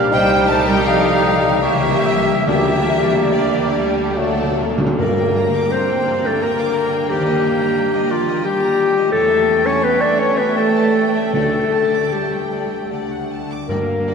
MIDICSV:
0, 0, Header, 1, 13, 480
1, 0, Start_track
1, 0, Key_signature, -2, "minor"
1, 0, Tempo, 754717
1, 74, Time_signature, 3, 2, 24, 8
1, 1035, Tempo, 847458
1, 2475, Tempo, 813008
1, 2955, Tempo, 716846
1, 3915, Tempo, 681044
1, 6315, Tempo, 739827
1, 6795, Tempo, 776197
1, 9010, End_track
2, 0, Start_track
2, 0, Title_t, "Violin section"
2, 0, Program_c, 0, 48
2, 79, Note_on_c, 0, 79, 111
2, 294, Note_off_c, 0, 79, 0
2, 308, Note_on_c, 0, 81, 100
2, 424, Note_off_c, 0, 81, 0
2, 435, Note_on_c, 0, 79, 112
2, 548, Note_off_c, 0, 79, 0
2, 556, Note_on_c, 0, 77, 100
2, 1041, Note_off_c, 0, 77, 0
2, 1043, Note_on_c, 0, 76, 104
2, 1517, Note_off_c, 0, 76, 0
2, 1525, Note_on_c, 0, 76, 103
2, 1995, Note_off_c, 0, 76, 0
2, 2002, Note_on_c, 0, 74, 73
2, 2477, Note_off_c, 0, 74, 0
2, 2960, Note_on_c, 0, 79, 67
2, 5796, Note_off_c, 0, 79, 0
2, 5821, Note_on_c, 0, 79, 71
2, 8223, Note_off_c, 0, 79, 0
2, 8249, Note_on_c, 0, 78, 47
2, 8599, Note_off_c, 0, 78, 0
2, 8734, Note_on_c, 0, 79, 47
2, 8783, Note_off_c, 0, 79, 0
2, 8963, Note_on_c, 0, 79, 40
2, 9010, Note_off_c, 0, 79, 0
2, 9010, End_track
3, 0, Start_track
3, 0, Title_t, "Violin section"
3, 0, Program_c, 1, 48
3, 0, Note_on_c, 1, 67, 67
3, 0, Note_on_c, 1, 74, 61
3, 67, Note_off_c, 1, 67, 0
3, 72, Note_off_c, 1, 74, 0
3, 74, Note_on_c, 1, 67, 62
3, 75, Note_off_c, 1, 67, 0
3, 75, Note_on_c, 1, 67, 83
3, 1010, Note_off_c, 1, 67, 0
3, 1036, Note_on_c, 1, 67, 75
3, 1038, Note_off_c, 1, 67, 0
3, 1038, Note_on_c, 1, 67, 77
3, 1505, Note_off_c, 1, 67, 0
3, 1513, Note_on_c, 1, 62, 60
3, 1514, Note_on_c, 1, 67, 63
3, 1990, Note_off_c, 1, 62, 0
3, 1990, Note_off_c, 1, 67, 0
3, 2000, Note_on_c, 1, 62, 65
3, 2001, Note_on_c, 1, 67, 65
3, 2466, Note_off_c, 1, 62, 0
3, 2467, Note_off_c, 1, 67, 0
3, 2479, Note_on_c, 1, 62, 63
3, 2480, Note_on_c, 1, 69, 76
3, 2825, Note_off_c, 1, 62, 0
3, 2833, Note_off_c, 1, 69, 0
3, 2962, Note_on_c, 1, 74, 62
3, 3074, Note_off_c, 1, 74, 0
3, 3086, Note_on_c, 1, 79, 55
3, 3206, Note_off_c, 1, 79, 0
3, 3206, Note_on_c, 1, 82, 54
3, 3327, Note_off_c, 1, 82, 0
3, 3335, Note_on_c, 1, 86, 56
3, 3447, Note_on_c, 1, 82, 54
3, 3452, Note_off_c, 1, 86, 0
3, 3567, Note_off_c, 1, 82, 0
3, 3568, Note_on_c, 1, 79, 59
3, 3685, Note_off_c, 1, 79, 0
3, 3686, Note_on_c, 1, 74, 56
3, 3801, Note_off_c, 1, 74, 0
3, 3802, Note_on_c, 1, 79, 52
3, 3916, Note_off_c, 1, 79, 0
3, 3917, Note_on_c, 1, 82, 60
3, 4036, Note_off_c, 1, 82, 0
3, 4038, Note_on_c, 1, 86, 54
3, 4157, Note_off_c, 1, 86, 0
3, 4159, Note_on_c, 1, 82, 53
3, 4277, Note_off_c, 1, 82, 0
3, 4278, Note_on_c, 1, 79, 53
3, 4394, Note_on_c, 1, 74, 60
3, 4396, Note_off_c, 1, 79, 0
3, 4505, Note_off_c, 1, 74, 0
3, 4519, Note_on_c, 1, 75, 53
3, 4635, Note_off_c, 1, 75, 0
3, 4642, Note_on_c, 1, 79, 52
3, 4755, Note_on_c, 1, 82, 52
3, 4756, Note_off_c, 1, 79, 0
3, 4872, Note_off_c, 1, 82, 0
3, 4877, Note_on_c, 1, 79, 54
3, 4991, Note_on_c, 1, 75, 63
3, 4992, Note_off_c, 1, 79, 0
3, 5108, Note_off_c, 1, 75, 0
3, 5112, Note_on_c, 1, 74, 65
3, 5228, Note_off_c, 1, 74, 0
3, 5238, Note_on_c, 1, 75, 57
3, 5347, Note_on_c, 1, 79, 64
3, 5351, Note_off_c, 1, 75, 0
3, 5465, Note_off_c, 1, 79, 0
3, 5470, Note_on_c, 1, 82, 60
3, 5586, Note_off_c, 1, 82, 0
3, 5592, Note_on_c, 1, 79, 59
3, 5706, Note_off_c, 1, 79, 0
3, 5708, Note_on_c, 1, 75, 54
3, 5825, Note_off_c, 1, 75, 0
3, 5825, Note_on_c, 1, 73, 62
3, 5935, Note_off_c, 1, 73, 0
3, 5946, Note_on_c, 1, 76, 57
3, 6066, Note_off_c, 1, 76, 0
3, 6073, Note_on_c, 1, 79, 54
3, 6192, Note_on_c, 1, 81, 55
3, 6194, Note_off_c, 1, 79, 0
3, 6317, Note_off_c, 1, 81, 0
3, 6323, Note_on_c, 1, 79, 56
3, 6434, Note_on_c, 1, 76, 57
3, 6438, Note_off_c, 1, 79, 0
3, 6553, Note_off_c, 1, 76, 0
3, 6560, Note_on_c, 1, 73, 57
3, 6676, Note_on_c, 1, 76, 52
3, 6677, Note_off_c, 1, 73, 0
3, 6797, Note_off_c, 1, 76, 0
3, 6797, Note_on_c, 1, 79, 60
3, 6914, Note_off_c, 1, 79, 0
3, 6919, Note_on_c, 1, 81, 51
3, 7035, Note_off_c, 1, 81, 0
3, 7044, Note_on_c, 1, 79, 49
3, 7158, Note_off_c, 1, 79, 0
3, 7165, Note_on_c, 1, 76, 50
3, 7277, Note_on_c, 1, 74, 43
3, 7279, Note_off_c, 1, 76, 0
3, 7388, Note_off_c, 1, 74, 0
3, 7396, Note_on_c, 1, 79, 42
3, 7517, Note_off_c, 1, 79, 0
3, 7520, Note_on_c, 1, 81, 46
3, 7640, Note_off_c, 1, 81, 0
3, 7646, Note_on_c, 1, 86, 45
3, 7764, Note_off_c, 1, 86, 0
3, 7768, Note_on_c, 1, 81, 41
3, 7886, Note_off_c, 1, 81, 0
3, 7887, Note_on_c, 1, 79, 41
3, 8006, Note_off_c, 1, 79, 0
3, 8012, Note_on_c, 1, 74, 43
3, 8130, Note_off_c, 1, 74, 0
3, 8132, Note_on_c, 1, 79, 40
3, 8248, Note_on_c, 1, 74, 44
3, 8251, Note_off_c, 1, 79, 0
3, 8361, Note_off_c, 1, 74, 0
3, 8377, Note_on_c, 1, 78, 38
3, 8494, Note_on_c, 1, 81, 45
3, 8495, Note_off_c, 1, 78, 0
3, 8613, Note_off_c, 1, 81, 0
3, 8618, Note_on_c, 1, 86, 43
3, 8732, Note_off_c, 1, 86, 0
3, 8735, Note_on_c, 1, 74, 44
3, 8784, Note_off_c, 1, 74, 0
3, 8967, Note_on_c, 1, 74, 45
3, 9010, Note_off_c, 1, 74, 0
3, 9010, End_track
4, 0, Start_track
4, 0, Title_t, "Cor anglais"
4, 0, Program_c, 2, 69
4, 0, Note_on_c, 2, 77, 89
4, 350, Note_off_c, 2, 77, 0
4, 539, Note_on_c, 2, 75, 68
4, 1033, Note_on_c, 2, 73, 65
4, 1042, Note_off_c, 2, 75, 0
4, 1274, Note_on_c, 2, 76, 74
4, 1283, Note_off_c, 2, 73, 0
4, 1512, Note_off_c, 2, 76, 0
4, 1515, Note_on_c, 2, 74, 68
4, 2700, Note_off_c, 2, 74, 0
4, 9010, End_track
5, 0, Start_track
5, 0, Title_t, "Clarinet"
5, 0, Program_c, 3, 71
5, 69, Note_on_c, 3, 63, 79
5, 1027, Note_on_c, 3, 58, 70
5, 1036, Note_off_c, 3, 63, 0
5, 2472, Note_on_c, 3, 57, 64
5, 2481, Note_off_c, 3, 58, 0
5, 2749, Note_off_c, 3, 57, 0
5, 2958, Note_on_c, 3, 70, 83
5, 3449, Note_on_c, 3, 72, 88
5, 3459, Note_off_c, 3, 70, 0
5, 3812, Note_on_c, 3, 69, 77
5, 3822, Note_off_c, 3, 72, 0
5, 3922, Note_on_c, 3, 70, 82
5, 3933, Note_off_c, 3, 69, 0
5, 4397, Note_on_c, 3, 67, 89
5, 4407, Note_off_c, 3, 70, 0
5, 5111, Note_on_c, 3, 65, 74
5, 5122, Note_off_c, 3, 67, 0
5, 5342, Note_off_c, 3, 65, 0
5, 5346, Note_on_c, 3, 67, 99
5, 5813, Note_off_c, 3, 67, 0
5, 5822, Note_on_c, 3, 69, 105
5, 6200, Note_on_c, 3, 73, 89
5, 6211, Note_off_c, 3, 69, 0
5, 6324, Note_on_c, 3, 71, 98
5, 6334, Note_off_c, 3, 73, 0
5, 6437, Note_on_c, 3, 74, 85
5, 6446, Note_off_c, 3, 71, 0
5, 6551, Note_on_c, 3, 73, 84
5, 6561, Note_off_c, 3, 74, 0
5, 6674, Note_on_c, 3, 71, 80
5, 6683, Note_off_c, 3, 73, 0
5, 6796, Note_off_c, 3, 71, 0
5, 6803, Note_on_c, 3, 69, 81
5, 7101, Note_off_c, 3, 69, 0
5, 7277, Note_on_c, 3, 69, 81
5, 7760, Note_on_c, 3, 67, 61
5, 7770, Note_off_c, 3, 69, 0
5, 8248, Note_off_c, 3, 67, 0
5, 8726, Note_on_c, 3, 70, 69
5, 9010, Note_off_c, 3, 70, 0
5, 9010, End_track
6, 0, Start_track
6, 0, Title_t, "Flute"
6, 0, Program_c, 4, 73
6, 78, Note_on_c, 4, 72, 101
6, 293, Note_off_c, 4, 72, 0
6, 319, Note_on_c, 4, 72, 86
6, 429, Note_on_c, 4, 70, 78
6, 438, Note_off_c, 4, 72, 0
6, 552, Note_on_c, 4, 69, 85
6, 562, Note_off_c, 4, 70, 0
6, 1039, Note_on_c, 4, 67, 79
6, 1048, Note_off_c, 4, 69, 0
6, 1515, Note_off_c, 4, 67, 0
6, 1523, Note_on_c, 4, 67, 88
6, 1995, Note_off_c, 4, 67, 0
6, 2012, Note_on_c, 4, 67, 58
6, 2473, Note_off_c, 4, 67, 0
6, 9010, End_track
7, 0, Start_track
7, 0, Title_t, "French horn section"
7, 0, Program_c, 5, 60
7, 71, Note_on_c, 5, 55, 83
7, 71, Note_on_c, 5, 63, 76
7, 238, Note_off_c, 5, 55, 0
7, 238, Note_off_c, 5, 63, 0
7, 1038, Note_on_c, 5, 58, 72
7, 1039, Note_on_c, 5, 67, 72
7, 1209, Note_off_c, 5, 58, 0
7, 1209, Note_off_c, 5, 67, 0
7, 1515, Note_on_c, 5, 67, 67
7, 1516, Note_on_c, 5, 58, 64
7, 1697, Note_off_c, 5, 67, 0
7, 1698, Note_off_c, 5, 58, 0
7, 2484, Note_on_c, 5, 66, 70
7, 2489, Note_on_c, 5, 57, 67
7, 2663, Note_off_c, 5, 66, 0
7, 2665, Note_off_c, 5, 57, 0
7, 9010, End_track
8, 0, Start_track
8, 0, Title_t, "Harp"
8, 0, Program_c, 6, 46
8, 0, Note_on_c, 6, 48, 60
8, 0, Note_on_c, 6, 55, 54
8, 0, Note_on_c, 6, 62, 50
8, 19, Note_on_c, 6, 63, 52
8, 49, Note_on_c, 6, 67, 54
8, 64, Note_off_c, 6, 62, 0
8, 922, Note_on_c, 6, 49, 68
8, 942, Note_off_c, 6, 55, 0
8, 950, Note_on_c, 6, 55, 54
8, 972, Note_off_c, 6, 67, 0
8, 979, Note_on_c, 6, 67, 51
8, 1000, Note_off_c, 6, 48, 0
8, 1007, Note_on_c, 6, 70, 58
8, 1028, Note_off_c, 6, 63, 0
8, 1411, Note_on_c, 6, 50, 57
8, 1431, Note_off_c, 6, 55, 0
8, 1437, Note_on_c, 6, 55, 44
8, 1457, Note_off_c, 6, 67, 0
8, 1483, Note_off_c, 6, 49, 0
8, 1483, Note_off_c, 6, 70, 0
8, 1489, Note_on_c, 6, 70, 47
8, 2370, Note_off_c, 6, 50, 0
8, 2377, Note_on_c, 6, 50, 60
8, 2402, Note_on_c, 6, 57, 52
8, 2428, Note_on_c, 6, 66, 50
8, 2454, Note_on_c, 6, 69, 46
8, 2457, Note_off_c, 6, 55, 0
8, 2483, Note_off_c, 6, 70, 0
8, 2922, Note_off_c, 6, 50, 0
8, 2935, Note_off_c, 6, 57, 0
8, 2948, Note_off_c, 6, 66, 0
8, 2959, Note_on_c, 6, 43, 61
8, 2962, Note_off_c, 6, 69, 0
8, 3122, Note_on_c, 6, 50, 50
8, 3287, Note_on_c, 6, 58, 54
8, 3452, Note_on_c, 6, 62, 45
8, 3611, Note_on_c, 6, 67, 46
8, 3761, Note_off_c, 6, 62, 0
8, 3769, Note_on_c, 6, 62, 46
8, 3912, Note_off_c, 6, 50, 0
8, 3920, Note_on_c, 6, 50, 47
8, 4074, Note_off_c, 6, 58, 0
8, 4082, Note_on_c, 6, 58, 37
8, 4233, Note_off_c, 6, 50, 0
8, 4241, Note_on_c, 6, 50, 49
8, 4403, Note_on_c, 6, 51, 59
8, 4415, Note_off_c, 6, 43, 0
8, 4417, Note_off_c, 6, 50, 0
8, 4550, Note_off_c, 6, 58, 0
8, 4559, Note_on_c, 6, 58, 56
8, 4706, Note_off_c, 6, 62, 0
8, 4715, Note_on_c, 6, 62, 56
8, 4866, Note_off_c, 6, 67, 0
8, 5033, Note_on_c, 6, 70, 53
8, 5195, Note_on_c, 6, 67, 58
8, 5344, Note_off_c, 6, 58, 0
8, 5352, Note_on_c, 6, 58, 51
8, 5500, Note_off_c, 6, 62, 0
8, 5509, Note_on_c, 6, 62, 42
8, 5661, Note_off_c, 6, 58, 0
8, 5670, Note_on_c, 6, 58, 53
8, 5830, Note_on_c, 6, 52, 59
8, 5843, Note_off_c, 6, 62, 0
8, 5844, Note_off_c, 6, 58, 0
8, 5844, Note_off_c, 6, 70, 0
8, 5845, Note_off_c, 6, 51, 0
8, 5991, Note_on_c, 6, 57, 57
8, 6152, Note_on_c, 6, 61, 53
8, 6311, Note_off_c, 6, 67, 0
8, 6319, Note_on_c, 6, 67, 49
8, 6477, Note_on_c, 6, 69, 54
8, 6629, Note_off_c, 6, 67, 0
8, 6637, Note_on_c, 6, 67, 47
8, 6790, Note_off_c, 6, 57, 0
8, 6798, Note_on_c, 6, 57, 45
8, 6949, Note_off_c, 6, 61, 0
8, 6956, Note_on_c, 6, 61, 41
8, 7105, Note_off_c, 6, 57, 0
8, 7113, Note_on_c, 6, 57, 42
8, 7274, Note_on_c, 6, 50, 44
8, 7293, Note_off_c, 6, 61, 0
8, 7296, Note_off_c, 6, 52, 0
8, 7428, Note_off_c, 6, 57, 0
8, 7436, Note_on_c, 6, 57, 42
8, 7596, Note_on_c, 6, 62, 42
8, 7757, Note_off_c, 6, 67, 0
8, 7764, Note_on_c, 6, 67, 39
8, 7919, Note_off_c, 6, 69, 0
8, 7926, Note_on_c, 6, 69, 35
8, 8082, Note_off_c, 6, 67, 0
8, 8089, Note_on_c, 6, 67, 38
8, 8244, Note_off_c, 6, 50, 0
8, 8251, Note_on_c, 6, 50, 45
8, 8269, Note_off_c, 6, 67, 0
8, 8409, Note_off_c, 6, 62, 0
8, 8416, Note_on_c, 6, 62, 35
8, 8573, Note_off_c, 6, 62, 0
8, 8580, Note_on_c, 6, 62, 37
8, 8584, Note_on_c, 6, 66, 39
8, 8735, Note_on_c, 6, 43, 47
8, 8748, Note_off_c, 6, 57, 0
8, 8749, Note_off_c, 6, 50, 0
8, 8749, Note_off_c, 6, 69, 0
8, 8753, Note_off_c, 6, 66, 0
8, 8892, Note_on_c, 6, 50, 42
8, 9010, Note_off_c, 6, 43, 0
8, 9010, Note_off_c, 6, 50, 0
8, 9010, Note_off_c, 6, 62, 0
8, 9010, End_track
9, 0, Start_track
9, 0, Title_t, "Viola section"
9, 0, Program_c, 7, 48
9, 0, Note_on_c, 7, 55, 59
9, 0, Note_on_c, 7, 58, 56
9, 69, Note_off_c, 7, 55, 0
9, 73, Note_off_c, 7, 58, 0
9, 74, Note_on_c, 7, 63, 84
9, 77, Note_on_c, 7, 55, 80
9, 1010, Note_off_c, 7, 63, 0
9, 1011, Note_off_c, 7, 55, 0
9, 1039, Note_on_c, 7, 55, 72
9, 1039, Note_on_c, 7, 58, 77
9, 1504, Note_off_c, 7, 55, 0
9, 1504, Note_off_c, 7, 58, 0
9, 1510, Note_on_c, 7, 55, 63
9, 1511, Note_on_c, 7, 58, 74
9, 1988, Note_off_c, 7, 55, 0
9, 1988, Note_off_c, 7, 58, 0
9, 1997, Note_on_c, 7, 58, 81
9, 2220, Note_off_c, 7, 58, 0
9, 2242, Note_on_c, 7, 55, 77
9, 2477, Note_on_c, 7, 57, 84
9, 2478, Note_off_c, 7, 55, 0
9, 2723, Note_on_c, 7, 58, 71
9, 2724, Note_off_c, 7, 57, 0
9, 2952, Note_off_c, 7, 58, 0
9, 2959, Note_on_c, 7, 58, 65
9, 5795, Note_off_c, 7, 58, 0
9, 5820, Note_on_c, 7, 57, 72
9, 8573, Note_off_c, 7, 57, 0
9, 8738, Note_on_c, 7, 58, 46
9, 8787, Note_off_c, 7, 58, 0
9, 8963, Note_on_c, 7, 58, 43
9, 9010, Note_off_c, 7, 58, 0
9, 9010, End_track
10, 0, Start_track
10, 0, Title_t, "Cello section"
10, 0, Program_c, 8, 48
10, 76, Note_on_c, 8, 55, 88
10, 292, Note_off_c, 8, 55, 0
10, 313, Note_on_c, 8, 57, 88
10, 427, Note_off_c, 8, 57, 0
10, 427, Note_on_c, 8, 55, 88
10, 541, Note_off_c, 8, 55, 0
10, 548, Note_on_c, 8, 53, 90
10, 1028, Note_off_c, 8, 53, 0
10, 1037, Note_on_c, 8, 52, 70
10, 1507, Note_off_c, 8, 52, 0
10, 1514, Note_on_c, 8, 52, 79
10, 1990, Note_off_c, 8, 52, 0
10, 1999, Note_on_c, 8, 50, 64
10, 2476, Note_off_c, 8, 50, 0
10, 2960, Note_on_c, 8, 58, 70
10, 3422, Note_off_c, 8, 58, 0
10, 3451, Note_on_c, 8, 60, 72
10, 3803, Note_off_c, 8, 60, 0
10, 3805, Note_on_c, 8, 57, 65
10, 3918, Note_off_c, 8, 57, 0
10, 3918, Note_on_c, 8, 58, 61
10, 4396, Note_off_c, 8, 58, 0
10, 4399, Note_on_c, 8, 55, 75
10, 5095, Note_off_c, 8, 55, 0
10, 5109, Note_on_c, 8, 53, 61
10, 5342, Note_off_c, 8, 53, 0
10, 5343, Note_on_c, 8, 55, 67
10, 5821, Note_off_c, 8, 55, 0
10, 5824, Note_on_c, 8, 57, 73
10, 6190, Note_off_c, 8, 57, 0
10, 6190, Note_on_c, 8, 61, 80
10, 6317, Note_off_c, 8, 61, 0
10, 6321, Note_on_c, 8, 59, 75
10, 6436, Note_off_c, 8, 59, 0
10, 6437, Note_on_c, 8, 62, 71
10, 6555, Note_off_c, 8, 62, 0
10, 6555, Note_on_c, 8, 61, 65
10, 6675, Note_off_c, 8, 61, 0
10, 6676, Note_on_c, 8, 59, 66
10, 6796, Note_on_c, 8, 57, 59
10, 6797, Note_off_c, 8, 59, 0
10, 7263, Note_off_c, 8, 57, 0
10, 7275, Note_on_c, 8, 57, 64
10, 7751, Note_off_c, 8, 57, 0
10, 7762, Note_on_c, 8, 55, 50
10, 8249, Note_off_c, 8, 55, 0
10, 8732, Note_on_c, 8, 58, 62
10, 9010, Note_off_c, 8, 58, 0
10, 9010, End_track
11, 0, Start_track
11, 0, Title_t, "Bassoon"
11, 0, Program_c, 10, 70
11, 0, Note_on_c, 10, 55, 85
11, 1326, Note_off_c, 10, 55, 0
11, 1514, Note_on_c, 10, 55, 69
11, 2475, Note_on_c, 10, 54, 66
11, 2484, Note_off_c, 10, 55, 0
11, 2751, Note_off_c, 10, 54, 0
11, 9010, End_track
12, 0, Start_track
12, 0, Title_t, "Timpani"
12, 0, Program_c, 11, 47
12, 1515, Note_on_c, 11, 50, 108
12, 2216, Note_off_c, 11, 50, 0
12, 2480, Note_on_c, 11, 50, 45
12, 2522, Note_off_c, 11, 50, 0
12, 2529, Note_on_c, 11, 50, 45
12, 2574, Note_off_c, 11, 50, 0
12, 2581, Note_on_c, 11, 50, 50
12, 2627, Note_off_c, 11, 50, 0
12, 2634, Note_on_c, 11, 50, 54
12, 2676, Note_off_c, 11, 50, 0
12, 2683, Note_on_c, 11, 50, 67
12, 2730, Note_off_c, 11, 50, 0
12, 2736, Note_on_c, 11, 50, 71
12, 2780, Note_off_c, 11, 50, 0
12, 2787, Note_on_c, 11, 50, 75
12, 2829, Note_off_c, 11, 50, 0
12, 2836, Note_on_c, 11, 50, 98
12, 2879, Note_off_c, 11, 50, 0
12, 2886, Note_on_c, 11, 50, 105
12, 2927, Note_off_c, 11, 50, 0
12, 2961, Note_on_c, 11, 43, 87
12, 3661, Note_off_c, 11, 43, 0
12, 7273, Note_on_c, 11, 50, 73
12, 7979, Note_off_c, 11, 50, 0
12, 8728, Note_on_c, 11, 43, 72
12, 9010, Note_off_c, 11, 43, 0
12, 9010, End_track
13, 0, Start_track
13, 0, Title_t, "Double bass section"
13, 0, Program_c, 12, 48
13, 76, Note_on_c, 12, 36, 68
13, 1011, Note_off_c, 12, 36, 0
13, 1032, Note_on_c, 12, 37, 71
13, 1512, Note_off_c, 12, 37, 0
13, 1512, Note_on_c, 12, 38, 60
13, 2806, Note_off_c, 12, 38, 0
13, 2954, Note_on_c, 12, 43, 66
13, 3365, Note_off_c, 12, 43, 0
13, 4394, Note_on_c, 12, 39, 70
13, 4790, Note_off_c, 12, 39, 0
13, 5820, Note_on_c, 12, 40, 63
13, 6231, Note_off_c, 12, 40, 0
13, 7272, Note_on_c, 12, 38, 49
13, 7678, Note_off_c, 12, 38, 0
13, 8248, Note_on_c, 12, 38, 44
13, 8651, Note_off_c, 12, 38, 0
13, 8730, Note_on_c, 12, 43, 52
13, 8780, Note_off_c, 12, 43, 0
13, 8967, Note_on_c, 12, 43, 46
13, 9010, Note_off_c, 12, 43, 0
13, 9010, End_track
0, 0, End_of_file